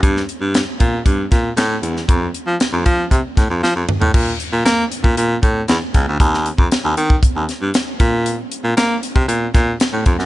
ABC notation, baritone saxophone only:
X:1
M:4/4
L:1/16
Q:1/4=117
K:Gm
V:1 name="Baritone saxophone" clef=bass
G,,2 z G,,2 z B,,2 G,,2 B,,2 A,,2 =E,,2 | F,,2 z F, z F,, F,2 C, z A,, F,, F, F,, z A,, | B,,2 z B,, B,2 z B,, B,,2 A,,2 _F,, z _D,, =D,, | E,,3 F,, z E,, E,2 z E,, z G,, z2 B,,2- |
B,,2 z B,, B,2 z C, B,,2 B,,2 z A,, F,, _G,, |]